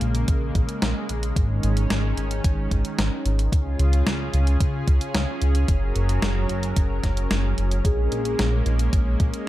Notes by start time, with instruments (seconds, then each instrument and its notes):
Already playing: analog synth pad C#3 G#3 A#3
0.01 analog synth bass A#1, closed hi-hat
0.15 closed hi-hat
0.28 analog synth bass A#1, kick, closed hi-hat
0.55 analog synth bass A#1, kick, closed hi-hat
0.69 closed hi-hat
0.82 analog synth bass A#1, snare, closed hi-hat
1.09 analog synth bass A#1, closed hi-hat
1.23 closed hi-hat
1.36 analog synth bass G#1, analog synth pad D#3 C#4, kick, closed hi-hat
1.63 analog synth bass G#1, closed hi-hat
1.77 closed hi-hat
1.90 analog synth bass G#1, snare, closed hi-hat
2.17 analog synth bass G#1, closed hi-hat
2.31 closed hi-hat
2.44 analog synth bass G#1, kick, closed hi-hat
2.71 analog synth bass G#1, kick, closed hi-hat
2.85 closed hi-hat
2.98 analog synth bass G#1, snare, closed hi-hat
3.25 analog synth bass G#1, closed hi-hat
3.39 closed hi-hat
3.52 analog synth bass C#2, analog synth pad C#3 C#4 F4 G#4, kick, closed hi-hat
3.79 analog synth bass C#2, closed hi-hat
3.93 closed hi-hat
4.06 analog synth bass C#2, snare, closed hi-hat
4.34 analog synth bass C#2, closed hi-hat
4.47 closed hi-hat
4.60 analog synth bass C#2, kick, closed hi-hat
4.87 analog synth bass C#2, kick, closed hi-hat
5.01 closed hi-hat
5.14 analog synth bass C#2, snare, closed hi-hat
5.42 analog synth bass C#2, closed hi-hat
5.55 closed hi-hat
5.68 analog synth bass F#1, analog synth pad F#3 A#4, kick, closed hi-hat
5.96 analog synth bass F#1, closed hi-hat
6.09 closed hi-hat
6.22 analog synth bass F#1, snare, closed hi-hat
6.49 analog synth bass F#1, closed hi-hat
6.63 closed hi-hat
6.76 analog synth bass F#1, kick, closed hi-hat
7.04 analog synth bass F#1, kick, snare, closed hi-hat
7.17 closed hi-hat
7.31 analog synth bass F#1, snare, closed hi-hat
7.58 analog synth bass F#1, closed hi-hat
7.71 closed hi-hat
7.84 analog synth bass A#1, analog synth pad G#3 A#3, soft synth lead G#4, kick, closed hi-hat
8.12 analog synth bass A#1, closed hi-hat
8.25 closed hi-hat
8.39 analog synth bass A#1, snare, closed hi-hat
8.66 analog synth bass A#1, closed hi-hat
8.79 closed hi-hat
8.93 analog synth bass A#1, kick, closed hi-hat
9.20 analog synth bass A#1, kick, closed hi-hat
9.34 closed hi-hat